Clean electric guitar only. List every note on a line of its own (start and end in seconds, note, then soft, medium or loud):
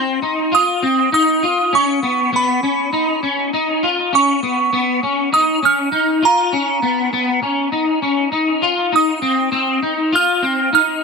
0.00 0.22 C4 medium
0.22 0.53 D#4 medium
0.52 0.82 F4 medium
0.82 1.12 C4 medium
1.12 1.43 D#4 medium
1.43 1.73 F4 medium
1.73 2.02 C#4 medium
2.03 2.32 B3 medium
2.33 2.63 B3 medium
2.63 2.92 C#4 medium
2.93 3.22 D#4 medium
3.23 3.53 C#4 medium
3.53 3.83 D#4 medium
3.83 4.13 F4 medium
4.13 4.42 C#4 medium
4.43 4.71 B3 medium
4.73 5.03 B3 medium
5.03 5.32 C#4 medium
5.32 5.62 D#4 medium
5.63 5.92 C#4 medium
5.92 6.22 D#4 medium
6.22 6.53 F4 medium
6.53 6.82 C#4 medium
6.82 7.12 B3 medium
7.13 7.42 B3 medium
7.43 7.72 C#4 medium
7.72 8.02 D#4 medium
8.02 8.31 C#4 medium
8.32 8.62 D#4 medium
8.62 8.93 F4 medium
8.92 9.22 D#4 medium
9.22 9.51 C4 medium
9.52 9.82 C4 medium
9.82 10.13 D#4 medium
10.12 10.43 F4 medium
10.42 10.72 C4 medium
10.73 11.03 D#4 medium